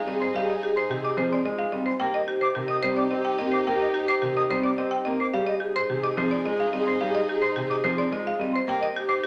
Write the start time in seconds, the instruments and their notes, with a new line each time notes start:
Already playing: violin section D#4 G#4, marimba F5
0.07 grand piano G3, vibraphone C4, marimba D#5
0.13 alto flute G#4
0.20 marimba C5, flute C6
0.34 grand piano G3, vibraphone G4, marimba F5
0.42 alto flute G#4
0.48 flute D#5, marimba D#5
0.61 marimba G4, vibraphone G#4
0.71 alto flute G#4
0.76 marimba C5, flute C6
0.90 grand piano C3, vibraphone G4, marimba G4
1.01 alto flute G#4, marimba D#5, flute D6
1.17 grand piano F3, vibraphone C4, marimba C5
1.28 alto flute G#4, flute C6
1.33 marimba D5
1.45 grand piano G#3, vibraphone F4, marimba D#5
1.58 alto flute G#4, marimba F5
1.72 grand piano G3, vibraphone C4, marimba D#5
1.86 marimba C5, flute C6
2.00 grand piano A#3, violin section D#4 G4, alto flute G4, vibraphone A#4, marimba G5
2.14 marimba D#5, flute D#5
2.28 marimba G4, alto flute G4, vibraphone C5
2.41 marimba C5, flute D6
2.55 grand piano C3, marimba G4, alto flute G4, vibraphone A#4
2.68 marimba D#5, flute D#6
2.83 grand piano G3, vibraphone C4, marimba C5
2.88 alto flute G4
2.97 marimba D5, flute D6
3.11 grand piano C4, vibraphone G4, marimba D#5
3.17 alto flute G4
3.25 marimba G5
3.39 grand piano A#3, vibraphone C4, marimba D#5
3.46 alto flute G4
3.52 marimba C5, flute D6
3.67 grand piano A#3, vibraphone A#4, marimba G5
3.75 alto flute G4
3.80 marimba D#5, flute D#5
3.94 marimba G4, vibraphone C5
4.03 alto flute G4
4.08 marimba C5, flute D6
4.22 grand piano C3, marimba G4, vibraphone A#4
4.32 alto flute G4
4.37 marimba D#5, flute D#6
4.50 grand piano G3, vibraphone C4, marimba C5
4.61 alto flute G4, marimba D5, flute D6
4.78 grand piano C4, vibraphone G4, marimba D#5
4.91 alto flute G4, marimba G5
5.05 grand piano A#3, vibraphone C4, marimba D#5
5.20 marimba C5, flute D6
5.34 grand piano G3, violin section D#4 G#4, vibraphone G4, alto flute G#4, marimba F5
5.46 marimba D#5, flute D#5
5.60 marimba G4, vibraphone G#4, alto flute G#4
5.76 marimba C5, flute C6
5.89 grand piano C3, vibraphone G4, marimba G4, alto flute G#4
6.03 marimba D#5, flute D6
6.17 grand piano F3, vibraphone C4, marimba C5
6.22 alto flute G#4
6.31 marimba D5, flute C6
6.45 grand piano G#3, vibraphone F4, marimba D#5
6.50 alto flute G#4
6.60 marimba F5
6.73 grand piano G3, vibraphone C4, marimba D#5
6.78 alto flute G#4
6.87 marimba C5, flute C6
7.01 grand piano G3, vibraphone G4, marimba F5
7.08 alto flute G#4
7.14 flute D#5, marimba D#5
7.28 marimba G4, vibraphone G#4
7.37 alto flute G#4
7.42 marimba C5, flute C6
7.56 grand piano C3, marimba G4, vibraphone G4
7.66 alto flute G#4, flute D6
7.71 marimba D#5
7.84 grand piano F3, vibraphone C4, marimba C5
7.95 alto flute G#4, marimba D5, flute C6
8.12 grand piano G#3, vibraphone F4, marimba D#5
8.24 alto flute G#4, marimba F5
8.39 grand piano G3, vibraphone C4, marimba D#5
8.53 marimba C5, flute C6
8.67 grand piano A#3, violin section D#4 G4, alto flute G4, vibraphone A#4, marimba G5
8.81 flute D#5, marimba D#5
8.95 alto flute G4, marimba G4, vibraphone C5
9.08 marimba C5, flute D6
9.23 marimba G4, vibraphone A#4